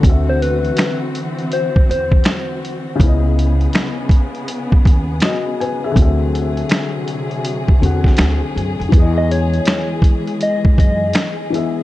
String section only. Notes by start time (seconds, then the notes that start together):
Already playing: F#4
0.04 E3 C4
2.99 C#3 B3 G#4
5.96 C3 F#3
8.92 E3 G#3